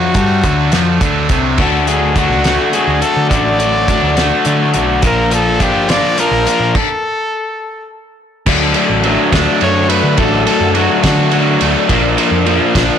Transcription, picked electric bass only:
Already playing: F2
0.15 G2
0.43 D2
0.72 F2
1.01 D2
1.30 C2
1.59 D2
2.30 C#2
2.88 D2
3.17 D3
3.31 A1
4.03 D2
4.46 D3
4.75 B1
5.03 A#1
5.74 G1
6.31 A#1
6.60 A#2
8.46 D2
8.90 A1
9.32 D2
9.62 F#2
10.04 D3
10.18 A1
10.61 F#2
11.03 D3
11.61 D2
11.89 A#1
12.31 F2
12.75 A#1

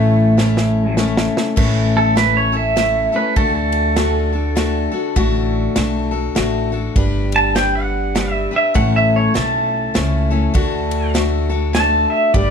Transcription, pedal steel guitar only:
Already playing: A3
1.97 A4
2.17 B4
2.37 C#5
2.57 E5
3.16 B4
3.37 A4
3.55 A4
7.36 A5
7.56 G5
7.75 F#5
8.31 E5
8.56 E5
8.75 F#5
8.96 E5
9.16 C#5
9.36 A5
11.75 A5
12.10 E5
12.34 D5

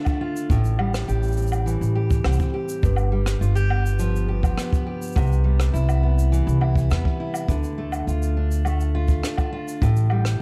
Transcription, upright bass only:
0.50 A1
1.08 A1
1.81 A1
2.25 C2
2.83 G1
3.41 G1
5.16 C2
5.74 C2
6.47 C2
6.91 E2
7.48 D2
8.07 D2
9.82 A1

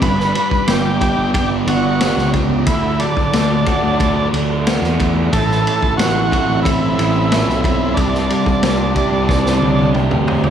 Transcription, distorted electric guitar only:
Already playing: D4
0.01 G2
0.35 G3
0.68 B3
1.01 G4
1.34 B3
1.67 D4
2.00 G4
2.34 B3
2.67 D3
3.00 F#3
3.34 A3
3.67 F#4
4.01 A3
4.33 D4
4.66 F#4
5.00 A3
5.32 A2
5.65 E3
5.98 C4
6.32 A4
6.65 C4
6.98 E4
7.32 A4
7.64 C4
7.97 C3
8.30 G3
8.62 C4
8.96 G4
9.29 C4
9.62 D4
9.95 G4
10.28 C4

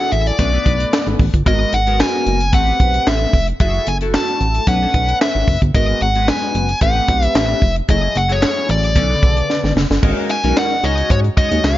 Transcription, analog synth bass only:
0.12 A1
0.39 B1
0.66 B1
1.07 G#1
1.19 A1
1.34 G1
1.46 G#1
1.73 G#1
2.26 F#1
2.53 A1
2.80 B1
3.07 A1
3.33 F1
3.60 F#1
3.87 F#1
4.41 A1
4.67 B1
4.94 B1
5.35 G#1
5.48 F#1
5.62 G1
5.75 G#1
6.01 G#1
6.55 F#1
6.82 A1
7.08 B1
7.35 A1
7.62 F1
7.89 F#1
8.15 F#1
8.69 A1
8.96 B1
9.23 B1
9.64 G#1
9.76 F#1
9.90 G1
10.03 G#1
10.44 B1
10.83 C#2
11.10 G#2
11.52 D#2
11.64 C#2

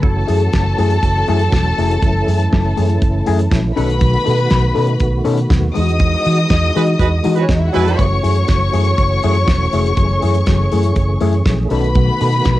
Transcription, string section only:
0.03 A4 A5
3.76 B4 B5
5.75 D#5 D#6
7.40 C#4 C#5
7.51 D#4 D#5
7.59 E4 E5
7.67 F#4 F#5
7.75 G#4 G#5
7.83 A4 A5
7.92 B4 B5
7.99 C#5 C#6
11.71 B4 B5

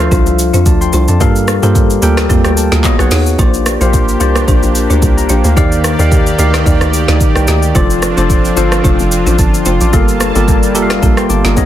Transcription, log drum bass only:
0.12 C2
0.27 C2
0.54 F2
0.66 D2
0.93 C2
1.08 F2
1.21 G2
1.63 G2
2.02 D2
2.30 F2
2.45 D2
2.72 D2
2.99 B1
3.12 D#2
3.39 A#1
3.81 A#1
4.21 C2
4.48 A#1
4.63 A#1
4.90 D2
5.02 C2
5.30 A#1
5.45 D2
5.57 D#2
5.99 D#2
6.39 D2
6.66 D#2
6.81 D2
7.08 D2
7.36 C2
7.48 D2
7.75 F1
8.17 F1
8.57 G1
8.84 F1
8.99 F1
9.27 A1
9.39 G1
9.66 F1
9.81 A1
9.93 G1
10.36 G1
10.75 F1
11.03 A#1
11.30 G1
11.45 G1
11.57 B1

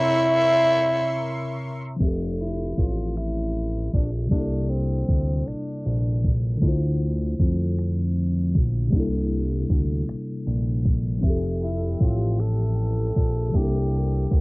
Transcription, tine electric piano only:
Already playing: C3 C4 E4 A#4 C#5
1.96 F3 C4
2.02 G4 E5
2.07 A4
4.26 C3 G3
4.31 A#3 D4
4.36 E4 A4
6.57 D3 A3
6.63 E4 F4
6.68 C5
8.88 C3 G3
8.92 A#3 D4
8.97 E4 A4
11.18 F3 C4
11.24 G4 E5
11.30 A4
13.49 C3 G3
13.54 A#3 D4
13.59 E4 A4

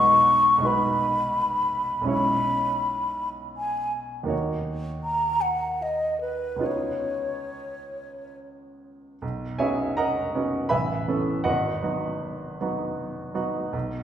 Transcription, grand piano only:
Already playing: B1 G#3 D#4 F#4 B4
0.58 B1 G#3 D#4
0.63 F#4 B4
2.01 B1 G#3 C#4
2.07 E4 C#5
4.23 D#2 A#3 D#4
4.28 F#4 C#5
6.56 C#2 B3 D#4
6.61 F4 C#5
9.22 B1
9.59 B3 C#4 D#4 F#4 G#4 C#5 E5 G#5
9.97 A#4 D#5 F#5 A#5
10.35 B3 C#4 D#4 F#4
10.69 A1 B4 E5 G#5 B5
11.08 E3 B3 C#4 A4
11.44 G#1 F#4 B4 D#5 F#5
11.82 F#3 B3 D#4 F#4
12.61 F#3 B3 D#4 F#4
13.34 F#3 B3 D#4 F#4
13.73 B1

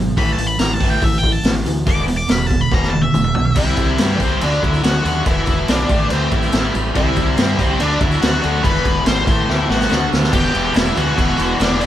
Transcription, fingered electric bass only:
Already playing: G#1
0.17 A1
0.38 A1
0.59 A1
0.81 A1
1.02 A1
1.44 A1
1.66 D2
1.87 E1
2.30 E1
2.72 E1
3.15 E1
3.36 B1
3.57 C2
3.78 C2
3.99 G2
4.20 C2
4.42 D2
4.63 D2
4.84 D2
5.05 D#2
5.27 E1
5.47 E1
5.68 B1
5.90 A1
6.10 D2
6.32 A1
6.53 A1
6.75 A1
6.96 C2
7.17 C2
7.38 G2
7.59 C2
7.80 D2
8.01 D2
8.22 D2
8.45 D2
8.64 E1
8.86 E1
9.06 G#1
9.28 A1
9.48 D2
9.70 A1
9.91 D2
10.13 D2
10.33 E1
10.54 E1
10.75 E1
10.97 D2
11.18 E1
11.39 E1
11.60 E1

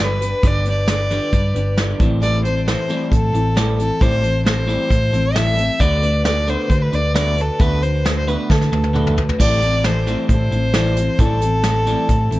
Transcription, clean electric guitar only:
0.00 G2 D3 G3
0.22 G2 D3
0.44 G2 D3 G3
0.67 G2 D3
0.88 G2 D3
1.11 G2 D3 G3
1.33 G2 D3
1.55 G2 D3
1.77 G2 D3 G3
2.00 A2 E3 G3
2.22 A2 E3 G3
2.45 A2 E3
2.68 A2 E3
2.90 A2 E3 G3
3.11 A2 E3
3.34 A2 E3
3.56 A2 E3 G3
3.79 A2 E3
4.01 A2 E3 G3
4.24 A2 E3
4.45 A2 E3
4.67 A2 E3 G3
4.90 A2 E3
5.13 A2 E3
5.35 A2 E3 G3
5.57 A2 E3
5.80 D3 A3 B3
6.02 D3 A3
6.25 D3 A3
6.48 D3 A3 B3
6.70 D3 A3
6.92 D3 A3
7.14 D3 A3 B3
7.37 D3 A3
7.60 D3 A3 B3
7.83 D3 A3
8.05 D3 A3
8.28 D3 A3 B3
8.51 A3
8.72 D3 A3
8.93 D3 A3 B3
9.17 D3 A3
9.39 A2 E3 G3
9.63 E3
9.84 A2 E3
10.07 A2 E3 G3
10.30 A2 E3
10.52 A2 E3
10.75 A2 E3 G3
10.97 A2 E3
11.19 A2 E3 G3
11.42 E3
11.64 A2 E3
11.86 A2 E3 G3
12.09 A2 E3
12.31 A2 E3

